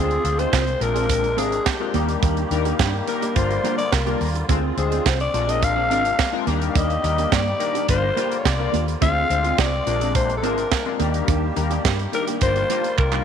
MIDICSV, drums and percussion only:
0, 0, Header, 1, 2, 480
1, 0, Start_track
1, 0, Tempo, 566038
1, 1888, Time_signature, 4, 2, 24, 8
1, 11230, End_track
2, 0, Start_track
2, 0, Title_t, "Drums"
2, 91, Note_on_c, 9, 42, 35
2, 176, Note_off_c, 9, 42, 0
2, 210, Note_on_c, 9, 42, 69
2, 295, Note_off_c, 9, 42, 0
2, 331, Note_on_c, 9, 42, 55
2, 416, Note_off_c, 9, 42, 0
2, 449, Note_on_c, 9, 36, 118
2, 452, Note_on_c, 9, 38, 115
2, 461, Note_on_c, 9, 39, 94
2, 534, Note_off_c, 9, 36, 0
2, 536, Note_off_c, 9, 38, 0
2, 546, Note_off_c, 9, 39, 0
2, 572, Note_on_c, 9, 42, 38
2, 657, Note_off_c, 9, 42, 0
2, 690, Note_on_c, 9, 42, 73
2, 774, Note_off_c, 9, 42, 0
2, 812, Note_on_c, 9, 42, 64
2, 896, Note_off_c, 9, 42, 0
2, 928, Note_on_c, 9, 42, 90
2, 930, Note_on_c, 9, 36, 108
2, 1012, Note_off_c, 9, 42, 0
2, 1014, Note_off_c, 9, 36, 0
2, 1051, Note_on_c, 9, 42, 37
2, 1135, Note_off_c, 9, 42, 0
2, 1170, Note_on_c, 9, 42, 83
2, 1255, Note_off_c, 9, 42, 0
2, 1291, Note_on_c, 9, 42, 52
2, 1376, Note_off_c, 9, 42, 0
2, 1407, Note_on_c, 9, 38, 115
2, 1409, Note_on_c, 9, 36, 124
2, 1416, Note_on_c, 9, 39, 95
2, 1492, Note_off_c, 9, 38, 0
2, 1494, Note_off_c, 9, 36, 0
2, 1501, Note_off_c, 9, 39, 0
2, 1646, Note_on_c, 9, 42, 78
2, 1730, Note_off_c, 9, 42, 0
2, 1769, Note_on_c, 9, 42, 52
2, 1854, Note_off_c, 9, 42, 0
2, 1888, Note_on_c, 9, 36, 124
2, 1888, Note_on_c, 9, 42, 89
2, 1973, Note_off_c, 9, 36, 0
2, 1973, Note_off_c, 9, 42, 0
2, 2009, Note_on_c, 9, 42, 38
2, 2094, Note_off_c, 9, 42, 0
2, 2130, Note_on_c, 9, 42, 72
2, 2215, Note_off_c, 9, 42, 0
2, 2250, Note_on_c, 9, 42, 57
2, 2335, Note_off_c, 9, 42, 0
2, 2369, Note_on_c, 9, 36, 126
2, 2371, Note_on_c, 9, 38, 114
2, 2380, Note_on_c, 9, 39, 90
2, 2454, Note_off_c, 9, 36, 0
2, 2456, Note_off_c, 9, 38, 0
2, 2465, Note_off_c, 9, 39, 0
2, 2608, Note_on_c, 9, 42, 76
2, 2692, Note_off_c, 9, 42, 0
2, 2734, Note_on_c, 9, 42, 65
2, 2819, Note_off_c, 9, 42, 0
2, 2848, Note_on_c, 9, 42, 92
2, 2850, Note_on_c, 9, 36, 107
2, 2933, Note_off_c, 9, 42, 0
2, 2935, Note_off_c, 9, 36, 0
2, 2973, Note_on_c, 9, 42, 36
2, 3058, Note_off_c, 9, 42, 0
2, 3092, Note_on_c, 9, 42, 76
2, 3177, Note_off_c, 9, 42, 0
2, 3210, Note_on_c, 9, 42, 53
2, 3295, Note_off_c, 9, 42, 0
2, 3329, Note_on_c, 9, 38, 113
2, 3330, Note_on_c, 9, 36, 109
2, 3338, Note_on_c, 9, 39, 92
2, 3413, Note_off_c, 9, 38, 0
2, 3414, Note_off_c, 9, 36, 0
2, 3423, Note_off_c, 9, 39, 0
2, 3449, Note_on_c, 9, 42, 37
2, 3534, Note_off_c, 9, 42, 0
2, 3570, Note_on_c, 9, 46, 77
2, 3655, Note_off_c, 9, 46, 0
2, 3693, Note_on_c, 9, 42, 49
2, 3778, Note_off_c, 9, 42, 0
2, 3809, Note_on_c, 9, 36, 123
2, 3811, Note_on_c, 9, 42, 88
2, 3894, Note_off_c, 9, 36, 0
2, 3896, Note_off_c, 9, 42, 0
2, 4051, Note_on_c, 9, 42, 74
2, 4136, Note_off_c, 9, 42, 0
2, 4170, Note_on_c, 9, 42, 54
2, 4255, Note_off_c, 9, 42, 0
2, 4290, Note_on_c, 9, 36, 122
2, 4292, Note_on_c, 9, 38, 115
2, 4301, Note_on_c, 9, 39, 94
2, 4375, Note_off_c, 9, 36, 0
2, 4377, Note_off_c, 9, 38, 0
2, 4386, Note_off_c, 9, 39, 0
2, 4412, Note_on_c, 9, 42, 36
2, 4496, Note_off_c, 9, 42, 0
2, 4530, Note_on_c, 9, 42, 73
2, 4615, Note_off_c, 9, 42, 0
2, 4654, Note_on_c, 9, 42, 66
2, 4739, Note_off_c, 9, 42, 0
2, 4770, Note_on_c, 9, 42, 93
2, 4771, Note_on_c, 9, 36, 110
2, 4854, Note_off_c, 9, 42, 0
2, 4856, Note_off_c, 9, 36, 0
2, 5012, Note_on_c, 9, 42, 79
2, 5097, Note_off_c, 9, 42, 0
2, 5131, Note_on_c, 9, 42, 54
2, 5216, Note_off_c, 9, 42, 0
2, 5248, Note_on_c, 9, 38, 117
2, 5249, Note_on_c, 9, 36, 122
2, 5257, Note_on_c, 9, 39, 90
2, 5333, Note_off_c, 9, 38, 0
2, 5334, Note_off_c, 9, 36, 0
2, 5342, Note_off_c, 9, 39, 0
2, 5487, Note_on_c, 9, 42, 76
2, 5572, Note_off_c, 9, 42, 0
2, 5610, Note_on_c, 9, 42, 48
2, 5695, Note_off_c, 9, 42, 0
2, 5728, Note_on_c, 9, 36, 120
2, 5729, Note_on_c, 9, 42, 88
2, 5813, Note_off_c, 9, 36, 0
2, 5813, Note_off_c, 9, 42, 0
2, 5852, Note_on_c, 9, 42, 36
2, 5937, Note_off_c, 9, 42, 0
2, 5971, Note_on_c, 9, 42, 74
2, 6055, Note_off_c, 9, 42, 0
2, 6092, Note_on_c, 9, 42, 54
2, 6177, Note_off_c, 9, 42, 0
2, 6208, Note_on_c, 9, 36, 124
2, 6210, Note_on_c, 9, 38, 117
2, 6220, Note_on_c, 9, 39, 93
2, 6293, Note_off_c, 9, 36, 0
2, 6295, Note_off_c, 9, 38, 0
2, 6305, Note_off_c, 9, 39, 0
2, 6448, Note_on_c, 9, 42, 77
2, 6532, Note_off_c, 9, 42, 0
2, 6573, Note_on_c, 9, 42, 63
2, 6658, Note_off_c, 9, 42, 0
2, 6687, Note_on_c, 9, 42, 92
2, 6689, Note_on_c, 9, 36, 104
2, 6772, Note_off_c, 9, 42, 0
2, 6774, Note_off_c, 9, 36, 0
2, 6931, Note_on_c, 9, 42, 78
2, 7016, Note_off_c, 9, 42, 0
2, 7051, Note_on_c, 9, 42, 51
2, 7136, Note_off_c, 9, 42, 0
2, 7169, Note_on_c, 9, 36, 112
2, 7170, Note_on_c, 9, 38, 116
2, 7179, Note_on_c, 9, 39, 93
2, 7254, Note_off_c, 9, 36, 0
2, 7254, Note_off_c, 9, 38, 0
2, 7264, Note_off_c, 9, 39, 0
2, 7409, Note_on_c, 9, 42, 74
2, 7494, Note_off_c, 9, 42, 0
2, 7532, Note_on_c, 9, 42, 50
2, 7617, Note_off_c, 9, 42, 0
2, 7648, Note_on_c, 9, 36, 117
2, 7649, Note_on_c, 9, 42, 87
2, 7732, Note_off_c, 9, 36, 0
2, 7734, Note_off_c, 9, 42, 0
2, 7890, Note_on_c, 9, 42, 73
2, 7975, Note_off_c, 9, 42, 0
2, 8009, Note_on_c, 9, 42, 54
2, 8094, Note_off_c, 9, 42, 0
2, 8128, Note_on_c, 9, 36, 122
2, 8130, Note_on_c, 9, 38, 117
2, 8139, Note_on_c, 9, 39, 92
2, 8213, Note_off_c, 9, 36, 0
2, 8214, Note_off_c, 9, 38, 0
2, 8224, Note_off_c, 9, 39, 0
2, 8368, Note_on_c, 9, 42, 67
2, 8453, Note_off_c, 9, 42, 0
2, 8491, Note_on_c, 9, 42, 62
2, 8575, Note_off_c, 9, 42, 0
2, 8606, Note_on_c, 9, 42, 87
2, 8609, Note_on_c, 9, 36, 113
2, 8691, Note_off_c, 9, 42, 0
2, 8693, Note_off_c, 9, 36, 0
2, 8731, Note_on_c, 9, 42, 37
2, 8816, Note_off_c, 9, 42, 0
2, 8850, Note_on_c, 9, 42, 80
2, 8935, Note_off_c, 9, 42, 0
2, 8969, Note_on_c, 9, 42, 54
2, 9054, Note_off_c, 9, 42, 0
2, 9087, Note_on_c, 9, 38, 115
2, 9088, Note_on_c, 9, 36, 114
2, 9096, Note_on_c, 9, 39, 89
2, 9172, Note_off_c, 9, 38, 0
2, 9173, Note_off_c, 9, 36, 0
2, 9181, Note_off_c, 9, 39, 0
2, 9325, Note_on_c, 9, 42, 77
2, 9410, Note_off_c, 9, 42, 0
2, 9447, Note_on_c, 9, 42, 49
2, 9531, Note_off_c, 9, 42, 0
2, 9566, Note_on_c, 9, 42, 88
2, 9567, Note_on_c, 9, 36, 122
2, 9650, Note_off_c, 9, 42, 0
2, 9652, Note_off_c, 9, 36, 0
2, 9807, Note_on_c, 9, 42, 74
2, 9892, Note_off_c, 9, 42, 0
2, 9927, Note_on_c, 9, 42, 53
2, 10012, Note_off_c, 9, 42, 0
2, 10048, Note_on_c, 9, 36, 127
2, 10050, Note_on_c, 9, 38, 113
2, 10059, Note_on_c, 9, 39, 94
2, 10133, Note_off_c, 9, 36, 0
2, 10135, Note_off_c, 9, 38, 0
2, 10144, Note_off_c, 9, 39, 0
2, 10169, Note_on_c, 9, 42, 37
2, 10254, Note_off_c, 9, 42, 0
2, 10288, Note_on_c, 9, 42, 69
2, 10373, Note_off_c, 9, 42, 0
2, 10410, Note_on_c, 9, 42, 68
2, 10494, Note_off_c, 9, 42, 0
2, 10524, Note_on_c, 9, 42, 90
2, 10529, Note_on_c, 9, 36, 105
2, 10608, Note_off_c, 9, 42, 0
2, 10613, Note_off_c, 9, 36, 0
2, 10649, Note_on_c, 9, 42, 38
2, 10734, Note_off_c, 9, 42, 0
2, 10769, Note_on_c, 9, 42, 85
2, 10854, Note_off_c, 9, 42, 0
2, 10891, Note_on_c, 9, 42, 50
2, 10976, Note_off_c, 9, 42, 0
2, 11010, Note_on_c, 9, 36, 115
2, 11011, Note_on_c, 9, 39, 61
2, 11095, Note_off_c, 9, 36, 0
2, 11096, Note_off_c, 9, 39, 0
2, 11131, Note_on_c, 9, 39, 65
2, 11216, Note_off_c, 9, 39, 0
2, 11230, End_track
0, 0, End_of_file